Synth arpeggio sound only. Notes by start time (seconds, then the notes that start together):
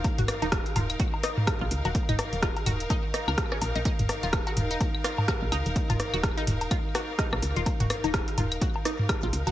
0.18 F#4
0.42 D#4
0.76 F4
1.00 F#4
1.23 D#4
1.61 F4
1.85 F#4
2.09 D#4
2.43 F4
2.66 F#4
2.90 D#4
3.14 D#4
3.28 A#4
3.52 C#4
3.76 D#4
3.85 D#4
4.23 F4
4.47 F#4
4.71 D#4
5.04 F4
5.28 F#4
5.52 D#4
5.90 F4
6.14 F#4
6.38 D#4
6.71 F4
6.95 F#4
7.19 D#4
7.57 F4
7.80 F#4
8.04 D#4
8.38 F4
8.62 F#4
8.85 D#4
9.23 F4
9.47 F#4